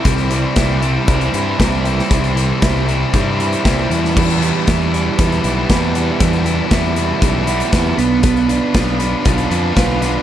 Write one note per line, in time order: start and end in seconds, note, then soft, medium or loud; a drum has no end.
0.00 0.82 C3 medium
0.00 0.31 C4 medium
0.00 0.57 E4 medium
0.00 7.94 E4 medium
0.00 3.86 C6 medium
0.04 0.45 C2 loud
0.04 0.55 E3 medium
0.04 0.31 G3 medium
0.04 0.30 C4 loud
0.04 0.29 E4 loud
0.04 3.86 C5 medium
0.04 2.08 G5 medium
0.04 kick loud
0.04 closed hi-hat loud
0.18 closed hi-hat soft
0.30 0.56 G3 medium
0.30 0.56 C4 medium
0.30 0.57 E4 medium
0.30 closed hi-hat medium
0.55 0.97 C2 medium
0.55 0.82 E3 medium
0.55 0.82 G3 medium
0.55 0.80 C4 medium
0.55 0.80 E4 medium
0.55 kick loud
0.55 snare loud
0.55 closed hi-hat loud
0.81 1.34 C3 medium
0.81 1.06 E3 medium
0.81 1.07 G3 medium
0.81 1.07 C4 loud
0.81 1.08 E4 loud
0.81 closed hi-hat medium
1.07 1.28 C2 medium
1.07 1.59 E3 medium
1.07 1.34 G3 medium
1.07 1.32 C4 medium
1.07 1.32 E4 medium
1.07 kick loud
1.07 closed hi-hat loud
1.21 closed hi-hat soft
1.33 1.54 G2 medium
1.33 1.59 G3 medium
1.33 1.59 C4 medium
1.33 1.60 E4 medium
1.33 closed hi-hat medium
1.59 2.00 C2 medium
1.59 2.08 C3 medium
1.59 2.09 E3 loud
1.59 1.86 G3 loud
1.59 1.85 C4 medium
1.59 1.84 E4 loud
1.59 kick loud
1.59 snare loud
1.59 closed hi-hat medium
1.84 2.10 G3 medium
1.84 2.09 C4 medium
1.84 2.11 E4 medium
1.84 closed hi-hat medium
1.99 snare soft
2.09 2.51 C2 loud
2.09 2.61 C3 medium
2.09 2.60 E3 medium
2.09 2.37 G3 medium
2.09 2.35 C4 medium
2.09 2.34 E4 medium
2.09 3.88 A5 medium
2.09 kick loud
2.09 closed hi-hat loud
2.24 closed hi-hat soft
2.35 2.61 G3 medium
2.35 2.60 C4 medium
2.35 2.62 E4 medium
2.35 closed hi-hat medium
2.60 3.03 C2 medium
2.60 2.88 E3 medium
2.60 2.87 G3 medium
2.60 2.86 C4 medium
2.60 2.86 E4 medium
2.60 kick loud
2.60 snare loud
2.60 closed hi-hat medium
2.86 3.39 C3 medium
2.86 3.13 E3 medium
2.86 3.13 G3 medium
2.86 3.13 C4 medium
2.86 3.14 E4 loud
2.86 closed hi-hat medium
3.13 3.54 G2 medium
3.13 3.64 E3 medium
3.13 3.39 G3 medium
3.13 3.38 C4 medium
3.13 3.37 E4 medium
3.13 kick loud
3.13 closed hi-hat loud
3.38 3.64 G3 medium
3.38 3.64 C4 medium
3.38 3.65 E4 medium
3.38 closed hi-hat medium
3.53 closed hi-hat medium
3.64 3.85 C2 medium
3.64 3.88 C3 medium
3.64 3.91 E3 medium
3.64 3.91 G3 loud
3.64 3.89 C4 medium
3.64 3.90 E4 loud
3.64 kick loud
3.64 snare loud
3.64 closed hi-hat loud
3.89 4.50 E2 medium
3.89 4.15 E2 medium
3.89 4.15 B2 medium
3.89 4.16 E3 medium
3.89 4.16 G3 medium
3.89 4.17 B3 medium
3.89 4.17 E4 medium
3.89 10.22 B4 medium
3.89 7.95 G5 medium
3.89 5.93 B5 medium
3.89 closed hi-hat medium
4.05 snare soft
4.16 4.94 E2 medium
4.16 4.67 B2 medium
4.16 4.42 E3 medium
4.16 4.42 G3 medium
4.16 4.41 B3 medium
4.16 4.40 E4 medium
4.16 kick loud
4.16 crash loud
4.30 closed hi-hat soft
4.41 4.66 E3 medium
4.41 4.67 G3 medium
4.41 4.67 B3 medium
4.41 4.68 E4 medium
4.41 closed hi-hat medium
4.66 5.08 E2 medium
4.66 4.93 E3 medium
4.66 4.93 G3 medium
4.66 4.93 B3 medium
4.66 4.92 E4 medium
4.66 kick loud
4.66 snare loud
4.66 closed hi-hat loud
4.93 5.45 E2 medium
4.93 5.45 B2 medium
4.93 5.17 E3 medium
4.93 5.18 G3 medium
4.93 5.20 B3 medium
4.93 5.20 E4 medium
4.93 closed hi-hat medium
5.19 5.39 E2 medium
5.19 5.45 E3 medium
5.19 5.45 G3 medium
5.19 5.45 B3 medium
5.19 5.43 E4 medium
5.19 kick loud
5.19 closed hi-hat loud
5.32 closed hi-hat soft
5.44 5.64 B1 loud
5.44 5.68 E3 medium
5.44 5.69 G3 medium
5.44 5.70 B3 medium
5.44 5.70 E4 medium
5.44 closed hi-hat medium
5.69 6.18 E2 loud
5.69 6.10 E2 medium
5.69 6.18 B2 medium
5.69 5.96 E3 loud
5.69 5.96 G3 loud
5.69 5.96 B3 medium
5.69 5.94 E4 loud
5.69 kick loud
5.69 snare loud
5.69 closed hi-hat medium
5.95 6.18 E3 medium
5.95 6.19 G3 medium
5.95 6.20 B3 medium
5.95 6.19 E4 medium
5.95 7.96 A5 medium
5.95 closed hi-hat medium
6.19 6.71 E2 medium
6.19 6.60 E2 loud
6.19 6.71 B2 medium
6.19 6.46 E3 medium
6.19 6.45 G3 medium
6.19 6.46 B3 medium
6.19 6.44 E4 medium
6.19 kick loud
6.19 closed hi-hat loud
6.33 closed hi-hat soft
6.45 6.70 E3 medium
6.45 6.71 G3 medium
6.45 6.72 B3 medium
6.45 6.72 E4 medium
6.45 closed hi-hat medium
6.71 7.11 E2 medium
6.71 6.96 E3 medium
6.71 6.96 G3 medium
6.71 6.96 B3 medium
6.71 6.95 E4 medium
6.71 kick loud
6.71 snare loud
6.71 closed hi-hat medium
6.96 7.48 E2 medium
6.96 7.48 B2 medium
6.96 7.20 E3 medium
6.96 7.21 G3 medium
6.96 7.21 B3 loud
6.96 7.22 E4 medium
6.96 closed hi-hat medium
7.21 7.62 B1 medium
7.21 7.47 E3 medium
7.21 7.47 G3 medium
7.21 7.46 B3 medium
7.21 7.46 E4 medium
7.21 kick loud
7.21 closed hi-hat medium
7.47 7.72 E3 medium
7.47 7.72 G3 medium
7.47 7.72 B3 medium
7.47 7.73 E4 medium
7.47 closed hi-hat medium
7.60 closed hi-hat soft
7.72 7.96 E2 medium
7.72 7.93 E2 medium
7.72 7.97 B2 loud
7.72 7.97 E3 loud
7.72 7.97 G3 medium
7.72 7.97 B3 loud
7.72 7.97 E4 loud
7.72 kick loud
7.72 snare loud
7.72 closed hi-hat loud
7.97 8.58 B1 loud
7.97 8.22 B3 medium
7.97 10.22 D4 medium
7.97 8.22 D4 medium
7.97 8.23 F4 medium
7.97 8.23 B4 medium
7.97 10.22 F5 medium
7.97 10.22 B5 medium
7.97 closed hi-hat medium
8.23 8.72 B3 medium
8.23 8.50 D4 loud
8.23 8.48 F4 medium
8.23 8.47 B4 loud
8.23 kick loud
8.23 closed hi-hat loud
8.37 closed hi-hat soft
8.49 8.73 D4 medium
8.49 8.73 F4 medium
8.49 8.74 B4 medium
8.49 closed hi-hat medium
8.74 9.14 B1 medium
8.74 9.00 B3 medium
8.74 8.99 D4 medium
8.74 8.99 F4 medium
8.74 8.98 B4 medium
8.74 kick loud
8.74 snare loud
8.74 closed hi-hat medium
8.99 9.24 B3 medium
8.99 9.25 D4 medium
8.99 9.25 F4 medium
8.99 9.26 B4 medium
8.99 closed hi-hat medium
9.25 9.46 B1 medium
9.25 9.74 B3 medium
9.25 9.51 D4 medium
9.25 9.50 F4 medium
9.25 9.49 B4 medium
9.25 kick loud
9.25 closed hi-hat loud
9.38 closed hi-hat soft
9.50 9.71 F2 loud
9.50 9.75 D4 medium
9.50 9.75 F4 medium
9.50 9.76 B4 medium
9.50 closed hi-hat medium
9.75 10.16 B1 medium
9.75 10.22 B3 loud
9.75 10.02 D4 medium
9.75 10.00 F4 loud
9.75 10.00 B4 loud
9.75 kick loud
9.75 snare loud
9.75 closed hi-hat medium
10.01 10.22 D4 medium
10.01 10.22 F4 medium
10.01 10.22 B4 medium
10.01 snare soft
10.01 closed hi-hat medium